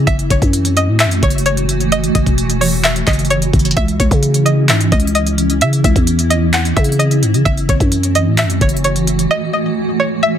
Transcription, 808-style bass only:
0.07 0.30 F#1 loud
0.30 0.41 F#1 loud
0.42 0.90 F#2 loud
0.88 1.07 A2 loud
1.05 1.22 F#2 loud
1.23 2.11 F#1 loud
2.15 2.26 F#1 loud
2.27 3.04 E1 loud
3.07 3.52 F#1 loud
3.53 3.76 F#1 loud
3.77 3.99 C#2 loud
4.00 4.11 C#2 loud
4.11 4.71 C#3 loud
4.69 4.91 G#2 loud
4.92 5.63 C#2 loud
5.61 5.83 C#3 loud
5.84 5.95 C#2 loud
5.96 6.73 E2 loud
6.77 7.24 C#3 loud
7.23 7.36 G#2 loud
7.34 7.45 C#3 loud
7.46 7.68 F#1 loud
7.69 7.80 F#1 loud
7.80 8.28 F#2 loud
8.27 8.45 A2 loud
8.44 8.60 F#2 loud
8.61 9.28 F#1 loud

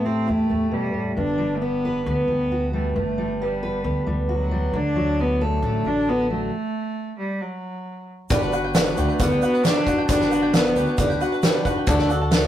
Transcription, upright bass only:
0.00 0.24 A1 medium
0.29 0.49 E2 medium
0.51 1.13 E2 medium
1.17 2.02 G1 medium
2.06 2.27 D2 medium
2.28 2.91 D2 medium
2.96 3.81 G1 medium
3.84 4.05 D2 medium
4.07 4.70 D2 medium
4.73 5.59 D2 medium
5.62 5.83 A1 medium
5.85 6.48 A1 medium
8.30 8.93 G1 medium
8.98 9.08 D2 medium
9.20 9.40 D2 medium
10.09 10.72 G1 medium
10.75 10.86 D2 medium
10.98 11.18 D2 medium
11.87 12.47 D2 loud

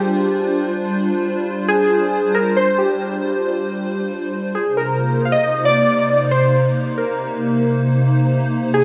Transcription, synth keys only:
0.00 0.77 G4 medium
1.68 2.37 G#4 loud
2.34 2.58 A#4 loud
2.57 2.78 C5 loud
2.78 4.07 G4 medium
4.55 4.78 G#4 medium
4.77 5.22 A#4 loud
5.25 5.33 F5 medium
5.32 5.67 D#5 loud
5.65 6.23 D5 loud
6.25 6.32 D5 medium
6.31 7.00 C5 loud
6.98 7.83 A#4 medium
8.74 8.84 G#4 loud

